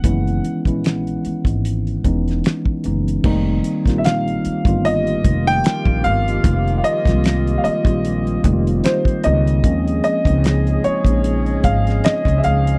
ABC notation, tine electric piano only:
X:1
M:4/4
L:1/16
Q:"Swing 16ths" 1/4=75
K:Fm
V:1 name="Tine electric piano"
[_F,A,_CD_F]2 z [F,A,CDF]4- [F,A,CDF] z2 [F,A,CDE]3 z [F,A,CDE]2 | [E,G,B,CE]2 z [E,G,B,CF]3 z [E,G,=A,B,CF]6 z3 | z3 [E,G,A,B,CF]3 z [E,G,B,CF]2 z [E,G,B,CEF]3 z [E,G,B,CE]2 | [F,A,B,CD]2 z [F,A,B,CE]3 z [F,A,B,DE]6 z3 |]